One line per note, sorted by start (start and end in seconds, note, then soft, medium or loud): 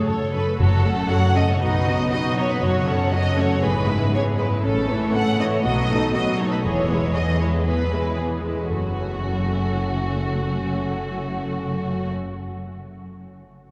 0.00 0.57 F#2 soft
0.00 0.60 C#3 soft
0.00 1.09 A3 soft
0.00 0.45 C#4 soft
0.00 0.31 A4 soft
0.00 0.33 A4 soft
0.00 0.18 C#5 soft
0.00 0.29 C#5 soft
0.06 0.16 F#2 soft
0.06 0.59 A4 soft
0.06 0.30 C#5 medium
0.06 1.62 A5 soft
0.20 1.62 C#5 soft
0.33 0.41 F#2 soft
0.33 1.62 A4 soft
0.33 0.58 B4 soft
0.46 0.92 C#4 soft
0.58 1.06 F#1 soft
0.58 1.62 F#2 soft
0.58 1.56 F#2 medium
0.58 1.31 F#2 medium
0.58 0.82 F#3 soft
0.58 0.82 F#4 soft
0.58 1.09 A4 medium
0.58 0.82 C#5 soft
0.76 1.62 C#3 soft
0.83 1.09 A3 soft
0.83 1.09 C#4 soft
0.83 1.10 A4 soft
0.83 1.10 F#5 soft
0.93 1.63 C#4 soft
1.09 1.35 F#3 soft
1.09 1.43 A3 soft
1.09 1.35 F#4 soft
1.09 1.35 C#5 soft
1.09 1.35 F#5 medium
1.27 1.55 G#3 soft
1.35 1.61 A3 soft
1.35 1.60 C#4 soft
1.35 1.60 A4 soft
1.35 1.48 D#5 medium
1.35 1.60 F#5 soft
1.44 1.63 A3 soft
1.49 1.61 C#5 soft
1.60 2.08 B1 soft
1.60 2.62 B2 soft
1.60 2.64 B2 soft
1.60 1.84 D#4 soft
1.60 1.84 F#4 soft
1.60 1.85 B4 soft
1.60 2.11 D#5 medium
1.78 3.11 F#3 soft
1.86 2.12 B3 soft
1.86 2.11 D#4 soft
1.86 2.12 F#4 soft
1.86 2.12 D#5 soft
1.95 2.64 B4 soft
2.12 2.44 B3 soft
2.12 2.37 D#4 soft
2.12 2.37 F#4 soft
2.12 2.37 B4 soft
2.12 2.36 D#5 medium
2.29 2.57 A3 soft
2.37 2.62 B3 soft
2.37 2.63 D#4 soft
2.37 2.62 F#4 soft
2.37 2.49 C#5 medium
2.37 2.62 D#5 soft
2.45 2.64 B3 soft
2.50 2.62 B4 medium
2.62 3.09 F#1 soft
2.62 3.61 F#2 soft
2.62 3.65 F#2 soft
2.62 2.86 F#3 soft
2.62 2.86 F#4 soft
2.62 3.12 C#5 medium
2.62 2.86 C#5 soft
2.79 3.65 C#3 soft
2.86 3.13 A3 soft
2.86 3.12 C#4 soft
2.86 3.12 A4 soft
2.86 3.13 F#5 soft
2.95 3.65 C#4 soft
3.12 3.46 F#3 soft
3.12 3.38 F#3 soft
3.12 3.38 F#4 soft
3.12 3.38 C#5 soft
3.12 3.38 D#5 medium
3.31 3.59 E3 soft
3.36 3.63 A3 soft
3.36 3.63 C#4 soft
3.36 3.62 A4 soft
3.36 3.63 C#5 medium
3.36 3.62 F#5 soft
3.47 3.66 F#3 soft
3.61 4.11 G#1 soft
3.61 4.64 G#2 soft
3.61 4.66 G#2 soft
3.61 3.86 E3 soft
3.61 3.87 B3 soft
3.61 3.86 G#4 soft
3.61 4.14 B4 medium
3.81 4.66 G#3 soft
3.87 4.13 G#3 soft
3.87 4.13 E4 soft
3.87 4.13 B4 soft
3.97 4.96 E4 soft
4.12 4.38 E3 soft
4.12 4.38 B3 soft
4.12 4.46 B3 soft
4.12 4.39 G#4 soft
4.12 4.22 C#5 medium
4.31 4.59 A3 soft
4.37 4.63 G#3 soft
4.37 4.64 E4 soft
4.37 4.46 B4 soft
4.37 4.64 B4 soft
4.47 4.66 B3 soft
4.63 5.10 A1 soft
4.63 5.62 A2 medium
4.63 5.66 A2 soft
4.63 4.86 A3 soft
4.63 4.87 C#4 soft
4.63 5.13 A4 medium
4.63 4.88 A4 soft
4.81 5.66 E3 soft
4.88 5.14 E3 soft
4.88 5.12 A3 soft
4.88 5.14 E4 soft
4.88 5.15 C#5 soft
4.98 5.66 E4 soft
5.13 5.39 A3 soft
5.13 5.39 C#4 soft
5.13 5.47 C#4 soft
5.13 5.40 C#4 soft
5.13 5.40 A4 soft
5.13 5.39 F#5 medium
5.31 5.59 B3 soft
5.40 5.65 E3 soft
5.40 5.65 A3 soft
5.40 5.65 E4 soft
5.40 5.65 C#5 soft
5.40 5.45 D#5 medium
5.48 5.67 C#4 soft
5.53 5.65 C#5 soft
5.64 6.11 B1 soft
5.64 6.65 B2 medium
5.64 6.67 B2 soft
5.64 5.88 F#3 soft
5.64 5.88 B3 soft
5.64 5.88 F#4 soft
5.64 6.13 D#5 medium
5.83 6.67 F#3 soft
5.91 6.15 A3 soft
5.91 6.16 D#4 soft
5.91 6.16 A4 soft
5.99 6.68 A4 soft
6.14 6.40 F#3 soft
6.14 6.40 B3 soft
6.14 6.48 B3 soft
6.14 6.40 F#4 soft
6.14 6.39 D#5 medium
6.32 6.60 A3 soft
6.39 6.65 A3 soft
6.39 6.65 D#4 soft
6.39 6.65 A4 soft
6.39 6.52 C#5 medium
6.49 7.15 B3 soft
6.49 6.57 B4 soft
6.64 7.12 E1 soft
6.64 8.49 E2 soft
6.64 6.88 E3 soft
6.64 7.66 E3 soft
6.64 6.89 B3 soft
6.64 6.89 G#4 soft
6.64 7.14 C#5 medium
6.83 7.82 E4 soft
6.91 7.16 G#3 soft
6.91 7.16 E4 soft
6.91 7.16 B4 soft
7.00 7.99 G#4 soft
7.15 7.42 E3 soft
7.15 7.50 B3 soft
7.15 7.42 B3 soft
7.15 7.41 G#4 soft
7.15 7.41 D#5 medium
7.33 7.61 A3 soft
7.40 7.67 G#3 soft
7.40 7.67 E4 soft
7.40 7.67 B4 soft
7.40 7.48 C#5 soft
7.51 8.17 B3 soft
7.66 8.72 E3 soft
7.66 7.91 E3 soft
7.66 7.91 B3 soft
7.66 7.90 G#4 soft
7.66 8.16 B4 soft
7.83 8.71 E4 soft
7.93 8.18 G#3 soft
7.93 8.18 E4 soft
7.93 8.18 B4 soft
8.00 8.71 G#4 soft
8.17 8.44 E3 soft
8.17 8.52 B3 soft
8.17 8.44 B3 soft
8.17 8.43 G#4 soft
8.35 8.64 A3 soft
8.43 8.69 G#3 soft
8.43 8.70 E4 soft
8.43 8.70 B4 soft
8.53 8.72 B3 soft
8.69 12.10 F#1 soft
8.69 12.10 F#2 soft
8.69 12.11 F#2 soft
8.69 12.60 F#2 soft
8.69 12.10 A3 soft
8.69 12.12 C#4 soft
8.69 12.10 F#4 soft
8.69 12.12 F#4 soft
8.76 12.46 F#3 soft
8.84 12.25 F#4 soft
8.91 12.32 A4 soft
8.98 12.39 F#5 soft